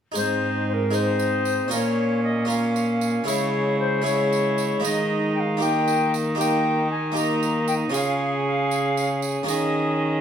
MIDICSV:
0, 0, Header, 1, 7, 480
1, 0, Start_track
1, 0, Key_signature, -4, "major"
1, 0, Tempo, 518583
1, 143, Time_signature, 6, 3, 24, 8
1, 9449, End_track
2, 0, Start_track
2, 0, Title_t, "Recorder"
2, 0, Program_c, 0, 74
2, 146, Note_on_c, 0, 72, 79
2, 595, Note_off_c, 0, 72, 0
2, 630, Note_on_c, 0, 72, 74
2, 674, Note_on_c, 0, 70, 81
2, 684, Note_off_c, 0, 72, 0
2, 870, Note_on_c, 0, 72, 75
2, 884, Note_off_c, 0, 70, 0
2, 1582, Note_off_c, 0, 72, 0
2, 1588, Note_on_c, 0, 75, 76
2, 1627, Note_on_c, 0, 73, 82
2, 1636, Note_off_c, 0, 75, 0
2, 2058, Note_off_c, 0, 73, 0
2, 2063, Note_on_c, 0, 75, 83
2, 2296, Note_off_c, 0, 75, 0
2, 2302, Note_on_c, 0, 77, 80
2, 3014, Note_off_c, 0, 77, 0
2, 3020, Note_on_c, 0, 73, 82
2, 3497, Note_off_c, 0, 73, 0
2, 3509, Note_on_c, 0, 72, 85
2, 3736, Note_off_c, 0, 72, 0
2, 3742, Note_on_c, 0, 73, 82
2, 4453, Note_off_c, 0, 73, 0
2, 4472, Note_on_c, 0, 75, 86
2, 4942, Note_off_c, 0, 75, 0
2, 4949, Note_on_c, 0, 79, 80
2, 4992, Note_on_c, 0, 77, 86
2, 5002, Note_off_c, 0, 79, 0
2, 5195, Note_on_c, 0, 79, 96
2, 5209, Note_off_c, 0, 77, 0
2, 5673, Note_off_c, 0, 79, 0
2, 5917, Note_on_c, 0, 79, 91
2, 6383, Note_off_c, 0, 79, 0
2, 6390, Note_on_c, 0, 80, 95
2, 6620, Note_off_c, 0, 80, 0
2, 6626, Note_on_c, 0, 82, 94
2, 7095, Note_off_c, 0, 82, 0
2, 7102, Note_on_c, 0, 79, 88
2, 7158, Note_off_c, 0, 79, 0
2, 7350, Note_on_c, 0, 77, 101
2, 7815, Note_off_c, 0, 77, 0
2, 7834, Note_on_c, 0, 77, 100
2, 8513, Note_off_c, 0, 77, 0
2, 8770, Note_on_c, 0, 75, 89
2, 9449, Note_off_c, 0, 75, 0
2, 9449, End_track
3, 0, Start_track
3, 0, Title_t, "Harpsichord"
3, 0, Program_c, 1, 6
3, 109, Note_on_c, 1, 63, 45
3, 125, Note_on_c, 1, 68, 44
3, 136, Note_on_c, 1, 72, 42
3, 145, Note_on_c, 1, 44, 51
3, 829, Note_off_c, 1, 63, 0
3, 833, Note_off_c, 1, 68, 0
3, 839, Note_on_c, 1, 63, 47
3, 843, Note_off_c, 1, 72, 0
3, 845, Note_on_c, 1, 68, 46
3, 860, Note_on_c, 1, 72, 44
3, 1554, Note_off_c, 1, 63, 0
3, 1555, Note_off_c, 1, 44, 0
3, 1556, Note_on_c, 1, 61, 45
3, 1557, Note_off_c, 1, 68, 0
3, 1565, Note_off_c, 1, 72, 0
3, 1569, Note_on_c, 1, 65, 42
3, 1580, Note_on_c, 1, 70, 44
3, 1591, Note_on_c, 1, 46, 47
3, 2259, Note_off_c, 1, 61, 0
3, 2270, Note_off_c, 1, 65, 0
3, 2270, Note_on_c, 1, 61, 45
3, 2281, Note_on_c, 1, 65, 44
3, 2284, Note_off_c, 1, 70, 0
3, 2293, Note_on_c, 1, 70, 47
3, 2988, Note_off_c, 1, 61, 0
3, 2996, Note_off_c, 1, 46, 0
3, 2996, Note_off_c, 1, 65, 0
3, 2999, Note_on_c, 1, 61, 45
3, 3002, Note_off_c, 1, 70, 0
3, 3008, Note_on_c, 1, 64, 47
3, 3021, Note_on_c, 1, 68, 48
3, 3035, Note_on_c, 1, 49, 47
3, 3707, Note_off_c, 1, 61, 0
3, 3718, Note_off_c, 1, 64, 0
3, 3719, Note_on_c, 1, 61, 46
3, 3726, Note_off_c, 1, 68, 0
3, 3729, Note_on_c, 1, 64, 51
3, 3738, Note_on_c, 1, 68, 46
3, 4434, Note_off_c, 1, 61, 0
3, 4438, Note_off_c, 1, 49, 0
3, 4439, Note_off_c, 1, 64, 0
3, 4442, Note_on_c, 1, 58, 44
3, 4444, Note_off_c, 1, 68, 0
3, 4449, Note_on_c, 1, 63, 47
3, 4463, Note_on_c, 1, 68, 47
3, 4474, Note_on_c, 1, 51, 52
3, 5146, Note_off_c, 1, 58, 0
3, 5157, Note_on_c, 1, 58, 49
3, 5158, Note_off_c, 1, 63, 0
3, 5165, Note_off_c, 1, 68, 0
3, 5167, Note_on_c, 1, 63, 50
3, 5184, Note_on_c, 1, 67, 50
3, 5867, Note_off_c, 1, 58, 0
3, 5875, Note_off_c, 1, 63, 0
3, 5878, Note_on_c, 1, 58, 52
3, 5884, Note_off_c, 1, 67, 0
3, 5887, Note_on_c, 1, 63, 50
3, 5900, Note_on_c, 1, 67, 50
3, 6578, Note_off_c, 1, 58, 0
3, 6589, Note_off_c, 1, 63, 0
3, 6589, Note_on_c, 1, 58, 50
3, 6600, Note_off_c, 1, 67, 0
3, 6600, Note_on_c, 1, 63, 54
3, 6613, Note_on_c, 1, 67, 51
3, 7303, Note_off_c, 1, 58, 0
3, 7307, Note_off_c, 1, 51, 0
3, 7308, Note_on_c, 1, 61, 50
3, 7309, Note_off_c, 1, 63, 0
3, 7315, Note_off_c, 1, 67, 0
3, 7316, Note_on_c, 1, 65, 48
3, 7326, Note_on_c, 1, 68, 51
3, 7342, Note_on_c, 1, 49, 57
3, 8724, Note_off_c, 1, 61, 0
3, 8727, Note_off_c, 1, 65, 0
3, 8732, Note_on_c, 1, 58, 47
3, 8733, Note_off_c, 1, 68, 0
3, 8741, Note_off_c, 1, 49, 0
3, 8742, Note_on_c, 1, 61, 50
3, 8755, Note_on_c, 1, 68, 50
3, 8764, Note_on_c, 1, 51, 52
3, 9445, Note_off_c, 1, 58, 0
3, 9449, Note_off_c, 1, 51, 0
3, 9449, Note_off_c, 1, 61, 0
3, 9449, Note_off_c, 1, 68, 0
3, 9449, End_track
4, 0, Start_track
4, 0, Title_t, "Viola"
4, 0, Program_c, 2, 41
4, 149, Note_on_c, 2, 63, 54
4, 834, Note_off_c, 2, 63, 0
4, 861, Note_on_c, 2, 63, 61
4, 1600, Note_on_c, 2, 61, 58
4, 1614, Note_off_c, 2, 63, 0
4, 2306, Note_off_c, 2, 61, 0
4, 2311, Note_on_c, 2, 61, 62
4, 3032, Note_on_c, 2, 64, 60
4, 3046, Note_off_c, 2, 61, 0
4, 3754, Note_off_c, 2, 64, 0
4, 3760, Note_on_c, 2, 64, 65
4, 4479, Note_on_c, 2, 63, 65
4, 4493, Note_off_c, 2, 64, 0
4, 5195, Note_off_c, 2, 63, 0
4, 5210, Note_on_c, 2, 63, 65
4, 5905, Note_off_c, 2, 63, 0
4, 5920, Note_on_c, 2, 63, 63
4, 6618, Note_off_c, 2, 63, 0
4, 6631, Note_on_c, 2, 63, 68
4, 7336, Note_on_c, 2, 68, 73
4, 7350, Note_off_c, 2, 63, 0
4, 8775, Note_off_c, 2, 68, 0
4, 8779, Note_on_c, 2, 68, 65
4, 9449, Note_off_c, 2, 68, 0
4, 9449, End_track
5, 0, Start_track
5, 0, Title_t, "Trombone"
5, 0, Program_c, 3, 57
5, 151, Note_on_c, 3, 60, 61
5, 835, Note_off_c, 3, 60, 0
5, 877, Note_on_c, 3, 60, 62
5, 1603, Note_on_c, 3, 58, 64
5, 1616, Note_off_c, 3, 60, 0
5, 2307, Note_off_c, 3, 58, 0
5, 2313, Note_on_c, 3, 58, 60
5, 3036, Note_on_c, 3, 56, 61
5, 3050, Note_off_c, 3, 58, 0
5, 3749, Note_off_c, 3, 56, 0
5, 3755, Note_on_c, 3, 56, 66
5, 4460, Note_off_c, 3, 56, 0
5, 4487, Note_on_c, 3, 56, 63
5, 5196, Note_on_c, 3, 58, 67
5, 5210, Note_off_c, 3, 56, 0
5, 5907, Note_off_c, 3, 58, 0
5, 5912, Note_on_c, 3, 58, 64
5, 6368, Note_off_c, 3, 58, 0
5, 6629, Note_on_c, 3, 58, 71
5, 7337, Note_on_c, 3, 61, 72
5, 7351, Note_off_c, 3, 58, 0
5, 8767, Note_off_c, 3, 61, 0
5, 8773, Note_on_c, 3, 61, 65
5, 9449, Note_off_c, 3, 61, 0
5, 9449, End_track
6, 0, Start_track
6, 0, Title_t, "Cello"
6, 0, Program_c, 4, 42
6, 149, Note_on_c, 4, 44, 57
6, 1557, Note_off_c, 4, 44, 0
6, 1591, Note_on_c, 4, 46, 61
6, 3004, Note_off_c, 4, 46, 0
6, 3036, Note_on_c, 4, 49, 65
6, 4446, Note_off_c, 4, 49, 0
6, 4481, Note_on_c, 4, 51, 63
6, 7311, Note_off_c, 4, 51, 0
6, 7348, Note_on_c, 4, 49, 66
6, 8752, Note_off_c, 4, 49, 0
6, 8777, Note_on_c, 4, 51, 69
6, 9449, Note_off_c, 4, 51, 0
6, 9449, End_track
7, 0, Start_track
7, 0, Title_t, "Drums"
7, 142, Note_on_c, 9, 54, 77
7, 234, Note_off_c, 9, 54, 0
7, 867, Note_on_c, 9, 54, 46
7, 960, Note_off_c, 9, 54, 0
7, 1106, Note_on_c, 9, 54, 45
7, 1199, Note_off_c, 9, 54, 0
7, 1345, Note_on_c, 9, 54, 50
7, 1438, Note_off_c, 9, 54, 0
7, 1582, Note_on_c, 9, 54, 77
7, 1674, Note_off_c, 9, 54, 0
7, 2311, Note_on_c, 9, 54, 46
7, 2404, Note_off_c, 9, 54, 0
7, 2553, Note_on_c, 9, 54, 43
7, 2645, Note_off_c, 9, 54, 0
7, 2789, Note_on_c, 9, 54, 50
7, 2882, Note_off_c, 9, 54, 0
7, 3034, Note_on_c, 9, 54, 78
7, 3127, Note_off_c, 9, 54, 0
7, 3758, Note_on_c, 9, 54, 46
7, 3850, Note_off_c, 9, 54, 0
7, 4004, Note_on_c, 9, 54, 41
7, 4096, Note_off_c, 9, 54, 0
7, 4238, Note_on_c, 9, 54, 50
7, 4331, Note_off_c, 9, 54, 0
7, 4484, Note_on_c, 9, 54, 74
7, 4577, Note_off_c, 9, 54, 0
7, 5201, Note_on_c, 9, 54, 48
7, 5294, Note_off_c, 9, 54, 0
7, 5439, Note_on_c, 9, 54, 45
7, 5532, Note_off_c, 9, 54, 0
7, 5683, Note_on_c, 9, 54, 51
7, 5776, Note_off_c, 9, 54, 0
7, 5931, Note_on_c, 9, 54, 78
7, 6024, Note_off_c, 9, 54, 0
7, 6631, Note_on_c, 9, 54, 50
7, 6724, Note_off_c, 9, 54, 0
7, 6874, Note_on_c, 9, 54, 47
7, 6966, Note_off_c, 9, 54, 0
7, 7105, Note_on_c, 9, 54, 50
7, 7197, Note_off_c, 9, 54, 0
7, 7349, Note_on_c, 9, 54, 80
7, 7442, Note_off_c, 9, 54, 0
7, 8064, Note_on_c, 9, 54, 50
7, 8157, Note_off_c, 9, 54, 0
7, 8305, Note_on_c, 9, 54, 47
7, 8397, Note_off_c, 9, 54, 0
7, 8537, Note_on_c, 9, 54, 52
7, 8630, Note_off_c, 9, 54, 0
7, 8778, Note_on_c, 9, 54, 79
7, 8870, Note_off_c, 9, 54, 0
7, 9449, End_track
0, 0, End_of_file